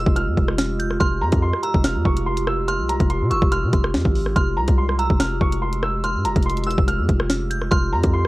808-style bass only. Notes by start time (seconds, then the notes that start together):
0.07 F1
0.28 F2
0.37 F1
1.00 F1
1.21 F2
1.32 F2
1.74 F1
1.95 F2
2.05 F1
2.79 C2
3.00 F1
3.21 C3
3.31 F1
3.42 F1
3.63 C3
3.73 F1
3.94 F2
4.05 G#1
4.36 F1
4.57 C2
4.68 C2
5.10 F1
5.41 F1
6.15 G#2
6.25 F1
6.36 F1
6.67 E1
6.78 F1
6.99 F2
7.09 F1
7.72 F1
7.93 F2
8.04 F2